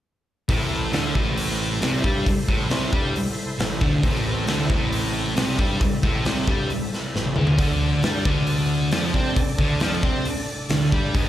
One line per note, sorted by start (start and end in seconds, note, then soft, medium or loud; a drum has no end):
0.49 0.90 A1 medium
0.49 0.92 A2 medium
0.49 4.01 E4 medium
0.49 4.00 A4 medium
0.49 4.00 C5 medium
0.49 kick loud
0.49 open hi-hat medium
0.93 1.14 D2 medium
0.93 1.15 D3 medium
0.93 snare medium
0.93 open hi-hat medium
1.15 1.78 A1 medium
1.15 1.81 A2 loud
1.15 kick medium
1.38 open hi-hat medium
1.81 2.02 C2 loud
1.81 2.03 C3 loud
1.81 snare loud
1.81 open hi-hat medium
2.03 2.25 G2 medium
2.03 2.25 G3 loud
2.03 kick medium
2.26 muted distorted electric guitar stroke medium
2.26 muted picked electric bass stroke soft
2.26 kick loud
2.26 open hi-hat medium
2.48 2.69 A1 medium
2.48 2.70 A2 loud
2.48 kick loud
2.70 2.91 C2 medium
2.70 2.92 C3 loud
2.70 snare loud
2.70 open hi-hat medium
2.93 3.14 G2 medium
2.93 3.14 G3 medium
2.93 kick loud
3.16 open hi-hat medium
3.59 3.80 A1 medium
3.59 3.77 A2 medium
3.59 snare loud
3.59 open hi-hat medium
3.81 4.02 D2 medium
3.81 4.03 D3 loud
3.81 kick loud
4.03 4.45 A1 medium
4.03 4.47 A2 loud
4.03 7.55 C4 medium
4.03 7.55 E4 medium
4.03 7.55 A4 medium
4.03 kick loud
4.03 open hi-hat medium
4.47 4.69 D2 medium
4.47 4.69 D3 loud
4.47 snare loud
4.47 open hi-hat soft
4.69 5.32 A1 medium
4.69 5.35 A2 loud
4.69 kick loud
4.93 open hi-hat medium
5.36 5.57 C2 medium
5.36 5.58 C3 loud
5.36 snare loud
5.36 open hi-hat medium
5.58 5.79 G2 medium
5.58 5.80 G3 loud
5.58 kick loud
5.80 muted distorted electric guitar stroke medium
5.80 muted picked electric bass stroke soft
5.80 kick loud
5.80 open hi-hat medium
6.03 6.24 A1 medium
6.03 6.25 A2 loud
6.03 kick loud
6.25 6.46 C2 medium
6.25 6.47 C3 loud
6.25 snare medium
6.25 open hi-hat soft
6.47 6.68 G2 medium
6.47 6.69 G3 loud
6.47 kick loud
6.70 open hi-hat soft
6.93 snare soft
7.15 7.35 A1 medium
7.15 7.32 A2 medium
7.15 snare medium
7.25 high tom medium
7.36 7.58 D2 medium
7.36 7.58 D3 loud
7.36 mid tom medium
7.47 floor tom medium
7.58 8.00 D2 medium
7.58 8.02 D3 loud
7.58 11.12 D4 medium
7.58 11.12 A4 medium
7.58 11.12 D5 medium
7.58 kick loud
7.58 open hi-hat medium
8.03 8.24 G2 medium
8.03 8.25 G3 loud
8.03 snare medium
8.03 open hi-hat medium
8.25 8.88 D2 medium
8.25 8.91 D3 loud
8.25 kick loud
8.47 open hi-hat medium
8.91 9.13 F2 medium
8.91 9.14 F3 loud
8.91 snare loud
8.91 open hi-hat medium
9.14 9.35 C3 medium
9.14 9.36 C4 loud
9.14 kick medium
9.36 muted picked electric bass stroke soft
9.36 muted distorted electric guitar stroke medium
9.36 kick loud
9.36 open hi-hat medium
9.59 9.80 D2 medium
9.59 9.81 D3 loud
9.59 kick loud
9.80 10.02 F2 medium
9.80 10.03 F3 loud
9.80 snare loud
9.80 open hi-hat medium
10.03 10.24 C3 medium
10.03 10.25 C4 loud
10.03 kick loud
10.25 open hi-hat medium
10.69 10.91 D2 medium
10.69 10.88 D3 medium
10.69 snare loud
10.69 open hi-hat medium
10.92 11.13 G2 loud
10.92 11.14 G3 loud
10.92 kick medium
11.14 11.29 G1 medium
11.14 11.29 G2 loud
11.14 11.29 D#4 medium
11.14 11.29 G#4 medium
11.14 11.29 D#5 medium
11.14 kick loud
11.14 open hi-hat medium